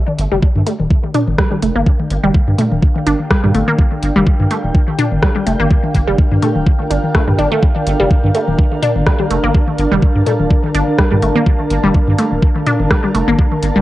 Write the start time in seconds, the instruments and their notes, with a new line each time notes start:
Already playing: ambient pad D4
0.08 high tom
0.19 sub bass G1, ambient pad A#4, closed hi-hat
0.32 sub bass F1, synth pluck G3, high tom
0.42 kick
0.53 sub bass G2, ambient pad F5, high tom
0.67 synth pluck A3, closed hi-hat
0.80 sub bass D1, high tom
0.85 ambient pad G5
0.91 kick
1.04 high tom
1.15 synth pluck D4, closed hi-hat, mid tom
1.28 sub bass G1, high tom
1.39 synth pluck G3, kick, cross-stick
1.52 synth pluck G3, high tom
1.63 sub bass F1, synth pluck A3, closed hi-hat
1.76 sub bass G1, synth pluck A#3, high tom
1.87 kick
2.00 high tom
2.11 sub bass G1, closed hi-hat
2.24 sub bass F1, synth pluck G3, high tom
2.35 kick
2.48 sub bass G2, high tom
2.58 synth pluck A3, closed hi-hat, mid tom
2.72 sub bass D1, high tom
2.83 kick
2.96 high tom
3.06 sub bass G1, synth pluck D4, closed hi-hat
3.20 high tom
3.31 synth pluck G3, kick, cross-stick
3.44 sub bass G2, synth pluck G3, mid tom, high tom
3.55 sub bass G1, synth pluck A3, closed hi-hat
3.68 synth pluck A#3, high tom
3.79 kick
3.92 high tom
4.03 sub bass G1, closed hi-hat
4.16 sub bass F1, synth pluck G3, high tom
4.27 kick
4.40 sub bass G2, high tom
4.51 synth pluck A3, closed hi-hat
4.64 sub bass D1, high tom
4.75 kick
4.88 high tom
4.99 synth pluck D4, closed hi-hat, mid tom
5.12 sub bass G1, high tom
5.23 synth pluck G3, kick, cross-stick
5.36 synth pluck G3, high tom
5.47 sub bass F1, synth pluck A3, closed hi-hat
5.60 sub bass G1, synth pluck A#3, high tom
5.71 kick
5.84 high tom
5.95 sub bass G1, kick, closed hi-hat
6.08 sub bass F1, synth pluck G3, high tom
6.19 kick
6.32 sub bass G2, high tom
6.42 synth pluck A3, closed hi-hat, mid tom
6.56 sub bass D1, high tom
6.67 kick
6.80 high tom
6.90 sub bass G1, synth pluck D4, closed hi-hat
7.04 high tom
7.14 synth pluck A3, kick, cross-stick
7.28 sub bass G2, synth pluck G3, mid tom, high tom
7.38 sub bass G1, synth pluck D4, closed hi-hat
7.52 synth pluck A3, high tom
7.63 kick
7.76 high tom
7.86 sub bass G1, closed hi-hat
8.00 sub bass F1, synth pluck G3, high tom
8.11 kick
8.24 sub bass G2, high tom
8.34 synth pluck A3, closed hi-hat
8.48 sub bass D1, high tom
8.53 ambient pad A5
8.59 kick
8.72 high tom
8.82 synth pluck D4, closed hi-hat, mid tom
8.96 sub bass G1, high tom
9.06 synth pluck G3, kick, cross-stick
9.20 synth pluck G3, high tom
9.31 sub bass F1, synth pluck A3, closed hi-hat
9.44 sub bass G1, synth pluck A#3, high tom
9.55 kick
9.68 high tom
9.79 sub bass G1, closed hi-hat
9.92 sub bass F1, synth pluck G3, high tom
10.03 kick
10.16 sub bass G2, high tom
10.26 synth pluck A3, closed hi-hat, mid tom
10.40 sub bass D1, high tom
10.51 kick
10.64 high tom
10.74 sub bass G1, synth pluck D4, closed hi-hat
10.88 high tom
10.99 synth pluck G3, kick, cross-stick
11.12 sub bass G2, synth pluck G3, mid tom, high tom
11.23 sub bass G1, synth pluck A3, closed hi-hat
11.36 synth pluck A#3, high tom
11.47 kick
11.60 high tom
11.71 sub bass G1, closed hi-hat
11.84 sub bass F1, synth pluck G3, high tom
11.95 kick
12.08 sub bass G2, high tom
12.19 synth pluck A3, closed hi-hat
12.32 sub bass D1, high tom
12.43 kick
12.56 high tom
12.67 synth pluck D4, closed hi-hat, mid tom
12.80 sub bass G1, high tom
12.90 synth pluck G3, kick, cross-stick
13.04 synth pluck G3, high tom
13.14 sub bass F1, synth pluck A3, closed hi-hat
13.28 sub bass G1, synth pluck A#3, high tom
13.39 kick
13.52 high tom
13.63 sub bass G1, closed hi-hat
13.76 sub bass F1, synth pluck G3, high tom